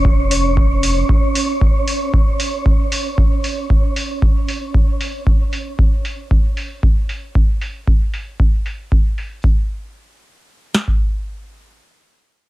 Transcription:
Already playing: F1 C#4 C#5
0.05 kick
0.31 open hi-hat
0.57 kick
0.83 open hi-hat
1.09 kick
1.35 open hi-hat
1.61 kick
1.88 open hi-hat
2.14 kick
2.40 open hi-hat
2.66 kick
2.92 open hi-hat
3.18 kick
3.44 open hi-hat
3.70 kick
3.96 open hi-hat
4.22 kick
4.48 open hi-hat
4.74 kick
5.01 open hi-hat
5.27 kick
5.53 open hi-hat
5.79 kick
6.05 open hi-hat
6.31 kick
6.57 open hi-hat
6.83 kick
7.09 open hi-hat
7.35 kick
7.61 open hi-hat
7.88 kick
8.14 open hi-hat
8.40 kick
8.66 open hi-hat
8.92 kick
9.18 open hi-hat
9.44 kick
10.75 snare
10.88 kick

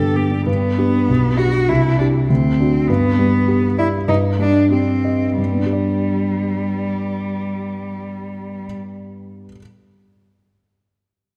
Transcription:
Already playing: G2 D3 B3 D4 G4 A4
0.16 B3 G4
0.31 D4
0.46 G2 B3
0.78 D4 G4
1.09 B1
1.38 D4 F#4 G4
1.69 C2 E4
1.99 D4 E4 G4
2.29 D2 C4
2.60 D4 F#4
2.88 G2 B3
3.19 G3
3.48 G4
3.78 E4 D5
4.08 G2 D#4
4.39 G3 D4
4.72 C4 G4
5.05 D#5
5.38 G2 G3
5.45 G3
5.52 B3
5.59 D4
5.66 G4
5.73 D5

